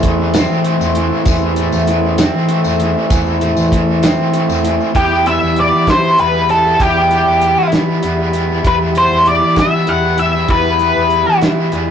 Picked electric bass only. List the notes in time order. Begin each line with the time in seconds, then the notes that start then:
Already playing: E2
0.49 E3
0.80 E2
1.26 E2
1.72 E2
2.34 E3
2.65 E2
3.11 E2
3.56 E2
4.18 E3
4.49 E2
4.95 E2
5.42 E2
5.73 E3
6.19 E2
6.80 E2
7.26 E2
7.57 E3
8.04 E2
8.65 E2
9.11 E2
9.42 E3
9.88 E2
10.49 E2
10.95 E2
11.26 E3
11.72 E2